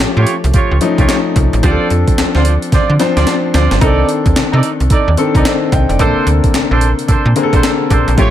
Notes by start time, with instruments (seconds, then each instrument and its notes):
Already playing: grand piano F3 A3 C#4 G4
0.00 snare, clap, closed hi-hat
0.16 fm bass A2, horn section F4 G4 C#5
0.27 closed hi-hat
0.44 fm bass C2, closed hi-hat
0.54 horn section F4 G4 C#5, kick, closed hi-hat
0.71 fm bass C#2
0.81 grand piano F3 A3 C#4 D#4, closed hi-hat
0.98 fm bass C2, horn section F4 G4 C#5, kick, closed hi-hat
1.09 snare, clap, closed hi-hat
1.36 fm bass C2, kick, closed hi-hat
1.53 fm bass A1, closed hi-hat
1.63 fm bass D2, grand piano F3 C4 D4 G4, horn section F4 C5 D5, kick, closed hi-hat
1.71 grand piano A4
1.90 fm bass F2, closed hi-hat
2.08 kick, closed hi-hat
2.18 fm bass D2, snare, clap, closed hi-hat
2.34 fm bass D2, horn section F4 C5 D5, snare
2.45 closed hi-hat
2.62 closed hi-hat
2.72 fm bass D3, horn section F4 C5 D5, kick, snare, closed hi-hat
2.90 fm bass D3
2.99 grand piano F3 C4 D4 C5, snare, closed hi-hat
3.16 fm bass D2, horn section F4 C5 D5, snare, closed hi-hat
3.27 snare, closed hi-hat
3.54 fm bass D2, horn section F4 C5 D5, snare, closed hi-hat
3.71 fm bass G1, snare, closed hi-hat
3.81 fm bass C2, grand piano D#3 C4 D4 A4, horn section D#4 A4 D5, kick, closed hi-hat
4.09 closed hi-hat
4.26 fm bass D#2, kick, closed hi-hat
4.36 fm bass C3, snare, clap, closed hi-hat
4.53 fm bass C3, horn section D#4 A4 D5
4.63 closed hi-hat
4.80 fm bass C2, closed hi-hat
4.90 horn section D#4 A4 D5, kick, closed hi-hat
5.08 fm bass D#2
5.17 grand piano D#3 C4 D4 A4, closed hi-hat
5.34 fm bass C2, horn section D#4 A4 D5, kick, closed hi-hat
5.45 grand piano C5 D#5, snare, clap, closed hi-hat
5.72 fm bass C2, grand piano D#5 G5, kick, closed hi-hat
5.89 fm bass F1, grand piano D5, closed hi-hat
5.99 fm bass A#1, grand piano C3 A#3 C4 A4, horn section D4 A4 C5, kick, closed hi-hat
6.06 grand piano D3
6.27 fm bass D2, closed hi-hat
6.44 kick, closed hi-hat
6.54 fm bass A#1, snare, clap, closed hi-hat
6.71 fm bass A#1, horn section D4 A4 C5
6.81 closed hi-hat
6.99 closed hi-hat
7.08 fm bass A#2, horn section D4 A4 C5, kick, closed hi-hat
7.26 fm bass A#2
7.36 grand piano D3 A#3 C4 G#4, closed hi-hat
7.43 grand piano A4
7.53 fm bass A#1, horn section D4 A4 C5, kick, closed hi-hat
7.63 snare, clap, closed hi-hat
7.90 fm bass A#1, horn section D4 A4 C5, kick, closed hi-hat
8.08 fm bass A#1, closed hi-hat
8.17 fm bass A1, grand piano F3 A3 C#4 G4, horn section F4 G4 C#5, kick, closed hi-hat